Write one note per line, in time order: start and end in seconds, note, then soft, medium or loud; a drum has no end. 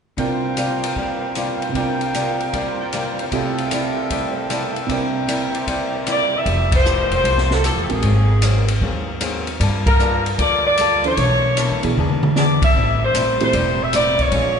0.17 1.67 C2 soft
0.17 0.45 C3 soft
0.17 1.70 C3 soft
0.17 0.46 G3 soft
0.17 0.46 A#3 soft
0.17 1.73 D4 soft
0.17 1.76 F4 soft
0.17 0.47 F4 medium
0.17 1.74 A#4 medium
0.17 1.76 A#4 medium
0.17 1.74 C5 medium
0.17 1.74 F5 medium
0.17 1.74 G5 medium
0.17 kick soft
0.17 ride soft
0.57 0.85 C3 medium
0.57 0.85 G3 medium
0.57 0.85 A#3 medium
0.57 0.86 F4 medium
0.57 hi-hat pedal soft
0.57 ride medium
0.84 ride medium
0.96 1.24 C3 soft
0.96 1.25 G3 soft
0.96 1.25 A#3 soft
0.96 1.25 F4 soft
0.96 kick soft
1.16 1.44 C5 soft
1.35 1.63 C3 medium
1.35 1.64 G3 medium
1.35 1.64 A#3 medium
1.35 1.64 F4 medium
1.35 1.66 D5 soft
1.35 hi-hat pedal soft
1.35 ride soft
1.55 1.83 F5 soft
1.62 ride soft
1.69 3.29 C2 medium
1.69 3.30 C3 soft
1.74 2.03 C3 soft
1.74 2.03 G3 soft
1.74 2.04 A#3 soft
1.74 3.32 D4 soft
1.74 3.31 F4 soft
1.74 3.32 A#4 medium
1.74 3.32 C5 medium
1.74 3.31 F5 medium
1.74 2.79 G5 medium
1.74 kick soft
1.74 ride soft
1.78 2.04 F4 medium
1.78 3.34 A#4 medium
2.01 ride soft
2.14 2.42 C3 medium
2.14 2.42 G3 medium
2.14 2.42 A#3 medium
2.14 2.43 F4 medium
2.14 hi-hat pedal soft
2.14 ride medium
2.40 ride soft
2.53 2.81 C3 soft
2.53 2.82 G3 soft
2.53 2.82 A#3 soft
2.53 2.82 F4 soft
2.53 kick soft
2.53 ride soft
2.74 2.86 C6 soft
2.80 3.32 D5 medium
2.80 3.31 G5 medium
2.80 2.97 A#5 soft
2.93 3.20 C3 medium
2.93 3.21 G3 medium
2.93 3.21 A#3 medium
2.93 3.21 F4 medium
2.93 3.11 G5 soft
2.93 hi-hat pedal soft
2.93 ride soft
3.04 3.20 F5 soft
3.14 3.25 D5 soft
3.19 3.36 C5 soft
3.19 ride soft
3.32 4.85 C2 soft
3.32 3.60 C3 soft
3.32 4.86 C3 soft
3.32 3.60 G3 soft
3.32 3.61 A3 soft
3.32 4.89 C4 medium
3.32 3.61 E4 medium
3.32 4.89 F4 soft
3.32 4.90 G4 soft
3.32 4.89 A4 medium
3.32 4.90 A4 medium
3.32 4.69 E5 soft
3.32 4.88 E5 medium
3.32 4.89 F5 medium
3.32 4.88 G5 medium
3.32 kick soft
3.32 ride soft
3.58 ride soft
3.71 3.99 C3 medium
3.71 4.00 G3 medium
3.71 4.00 A3 medium
3.71 4.00 E4 medium
3.71 hi-hat pedal medium
3.71 ride medium
4.10 4.38 C3 soft
4.10 4.39 G3 medium
4.10 4.39 A3 soft
4.10 4.40 E4 medium
4.10 kick soft
4.10 ride medium
4.31 4.58 C5 soft
4.50 4.77 C3 medium
4.50 4.78 G3 medium
4.50 4.78 A3 medium
4.50 4.78 E4 medium
4.50 4.80 D5 soft
4.50 hi-hat pedal soft
4.50 ride medium
4.70 4.97 E5 soft
4.76 ride soft
4.86 6.45 C2 soft
4.86 6.45 C3 soft
4.86 5.17 C3 medium
4.86 5.17 G3 soft
4.86 6.46 D4 soft
4.86 6.47 E4 soft
4.86 6.46 A#4 medium
4.86 5.53 C5 medium
4.86 5.54 E5 medium
4.86 6.46 G5 medium
4.86 kick soft
4.86 ride soft
4.91 5.18 A#3 soft
4.91 5.18 E4 soft
4.91 6.47 A#4 medium
5.27 5.55 C3 medium
5.27 5.56 G3 medium
5.27 5.56 A#3 medium
5.27 5.57 E4 medium
5.27 hi-hat pedal soft
5.27 ride medium
5.54 6.46 C5 medium
5.54 6.46 D5 medium
5.54 6.46 E5 medium
5.54 ride soft
5.66 5.95 C3 soft
5.66 5.95 G3 soft
5.66 5.96 A#3 medium
5.66 5.96 E4 medium
5.66 kick soft
5.66 ride medium
5.94 6.14 C5 soft
6.07 6.34 C3 medium
6.07 6.35 G3 medium
6.07 6.35 A#3 medium
6.07 6.35 E4 medium
6.07 6.31 D5 soft
6.07 6.33 D5 medium
6.07 hi-hat pedal medium
6.07 ride medium
6.20 6.40 E5 soft
6.33 6.74 E5 medium
6.33 6.53 G5 soft
6.45 7.07 F1 medium
6.45 6.73 F3 soft
6.45 6.74 A3 soft
6.45 6.74 E4 soft
6.45 6.74 G4 soft
6.45 kick soft
6.45 ride medium
6.72 7.10 C5 medium
6.72 kick medium
6.72 ride medium
6.85 7.13 F3 medium
6.85 7.13 A3 medium
6.85 7.13 E4 medium
6.85 7.14 G4 medium
6.85 hi-hat pedal medium
7.10 7.23 E1 medium
7.10 7.49 C5 medium
7.10 ride soft
7.24 7.73 C2 medium
7.24 7.52 F3 soft
7.24 7.52 A3 soft
7.24 7.53 E4 soft
7.24 7.54 G4 soft
7.24 kick soft
7.24 ride medium
7.38 snare soft
7.51 7.63 A4 medium
7.51 snare soft
7.63 7.91 F3 medium
7.63 7.92 A3 medium
7.63 7.92 E4 medium
7.63 7.92 G4 medium
7.63 7.80 A4 medium
7.63 hi-hat pedal medium
7.63 ride medium
7.76 7.89 E2 medium
7.82 7.91 G4 soft
7.89 8.02 A1 medium
7.89 8.02 G#3 soft
7.89 8.02 C4 soft
7.89 8.02 F#4 soft
7.89 8.69 G#4 medium
7.89 8.02 A#4 medium
7.89 ride soft
8.02 8.77 G#1 medium
8.02 8.30 G#2 soft
8.02 8.31 F#3 soft
8.02 8.31 A#3 soft
8.02 8.32 C4 medium
8.02 kick soft
8.02 ride medium
8.42 8.70 G#2 medium
8.42 8.70 F#3 medium
8.42 8.71 A#3 medium
8.42 8.71 C4 medium
8.42 hi-hat pedal medium
8.42 ride medium
8.68 ride medium
8.81 9.56 D#2 medium
8.81 9.09 G#2 medium
8.81 9.10 F#3 soft
8.81 9.10 A#3 medium
8.81 9.11 C4 medium
8.81 kick soft
9.20 9.48 G#2 medium
9.20 9.49 F#3 medium
9.20 9.49 A#3 medium
9.20 9.49 C4 medium
9.20 hi-hat pedal medium
9.20 ride medium
9.47 ride soft
9.59 10.35 G2 medium
9.59 9.87 G3 soft
9.59 9.88 A#3 medium
9.59 9.89 F4 soft
9.59 9.89 A4 medium
9.59 kick soft
9.59 ride medium
9.86 10.23 A#4 medium
9.86 kick medium
9.86 ride medium
10.00 10.27 G3 medium
10.00 10.27 A#3 medium
10.00 10.28 F4 medium
10.00 10.28 A4 medium
10.00 hi-hat pedal soft
10.26 ride soft
10.38 11.14 D2 medium
10.38 10.66 G3 soft
10.38 10.67 A#3 soft
10.38 10.67 F4 soft
10.38 10.68 A4 medium
10.38 10.63 D5 loud
10.38 kick soft
10.38 ride medium
10.66 11.02 D5 loud
10.78 11.06 G3 medium
10.78 11.06 A#3 medium
10.78 11.07 F4 medium
10.78 11.07 A4 medium
10.78 hi-hat pedal soft
10.78 ride medium
11.04 11.16 E3 medium
11.04 11.17 C#4 soft
11.04 11.17 D4 soft
11.04 11.17 A4 medium
11.04 11.80 C#5 medium
11.04 ride soft
11.17 11.66 B1 medium
11.17 11.45 B2 soft
11.17 11.46 E3 soft
11.17 11.46 A3 soft
11.17 11.47 D4 soft
11.17 kick soft
11.17 ride medium
11.57 11.85 B2 medium
11.57 11.85 E3 medium
11.57 11.85 A3 medium
11.57 11.86 D4 medium
11.57 hi-hat pedal medium
11.57 ride medium
11.71 11.83 F#2 medium
11.83 11.96 B2 medium
11.83 11.95 E3 medium
11.83 11.95 B3 medium
11.83 11.95 D4 medium
11.83 11.96 G#4 medium
11.83 ride soft
11.96 12.72 E2 medium
11.96 12.24 E3 soft
11.96 12.25 B3 soft
11.96 12.25 D4 soft
11.96 12.26 G#4 medium
11.96 mid tom soft
12.09 mid tom medium
12.23 mid tom medium
12.36 12.63 E3 medium
12.36 12.64 B3 medium
12.36 12.64 D4 medium
12.36 12.64 G#4 medium
12.36 12.60 D5 medium
12.36 snare soft
12.36 hi-hat pedal soft
12.62 12.99 E5 medium
12.62 kick medium
12.62 ride medium
12.75 13.12 A1 medium
12.75 13.02 A2 soft
12.75 13.03 G3 soft
12.75 13.03 C4 soft
12.75 13.04 E4 soft
13.03 13.39 C5 medium
13.14 13.51 A#1 medium
13.14 13.42 A2 medium
13.14 13.42 G3 medium
13.14 13.43 C4 medium
13.14 13.43 E4 medium
13.14 hi-hat pedal medium
13.14 ride medium
13.40 13.52 E3 medium
13.40 13.53 A3 medium
13.40 13.53 C4 medium
13.40 13.53 G4 medium
13.40 13.79 C5 medium
13.40 ride soft
13.53 14.28 E1 medium
13.53 13.81 A2 soft
13.53 13.82 G3 soft
13.53 13.82 C4 medium
13.53 13.82 E4 soft
13.53 kick soft
13.53 ride medium
13.81 13.94 E5 medium
13.93 14.21 A2 medium
13.93 14.21 G3 medium
13.93 14.21 C4 medium
13.93 14.21 E4 medium
13.93 14.19 D5 medium
13.93 hi-hat pedal medium
13.93 ride medium
14.19 14.60 C#5 medium
14.19 kick soft
14.19 ride soft
14.31 14.60 A#1 medium
14.31 14.59 A#2 soft
14.31 14.60 G#3 soft
14.31 14.60 C#4 soft
14.31 14.60 F4 soft
14.31 kick soft
14.31 ride medium